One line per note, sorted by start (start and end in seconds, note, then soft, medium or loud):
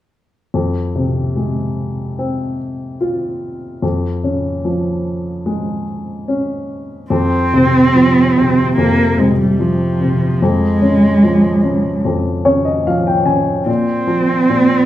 0.54 3.79 F2 soft
0.96 2.56 C3 soft
1.36 2.97 G#3 soft
2.19 3.78 C4 soft
3.01 3.80 F4 soft
3.82 7.07 F2 soft
4.24 5.83 C#3 soft
4.65 6.25 F3 soft
5.46 7.07 G#3 soft
6.28 7.08 C#4 soft
7.10 8.77 F2 soft
7.10 8.72 C4 medium
7.54 8.36 C3 soft
7.95 9.55 F3 soft
8.37 9.17 C3 soft
8.77 10.38 F2 soft
8.77 9.21 A#3 medium
9.18 9.99 C3 soft
9.18 9.39 G#3 medium
9.40 9.62 G3 soft
9.59 10.39 F3 soft
9.59 10.46 F3 medium
10.01 10.40 C3 soft
10.42 12.04 F2 soft
10.42 12.06 G#3 medium
10.82 11.62 C#3 soft
11.23 12.82 F3 soft
11.63 12.44 C#3 soft
12.05 13.64 F2 soft
12.45 13.24 C#3 soft
12.45 12.64 C#5 soft
12.65 12.84 D#5 soft
12.87 13.66 F3 soft
12.87 13.06 F5 soft
13.07 13.26 G5 soft
13.25 13.66 C#3 soft
13.25 13.64 G#5 soft
13.66 14.48 A#2 soft
13.66 14.85 C4 medium
14.07 14.85 F3 soft
14.50 14.85 A#2 soft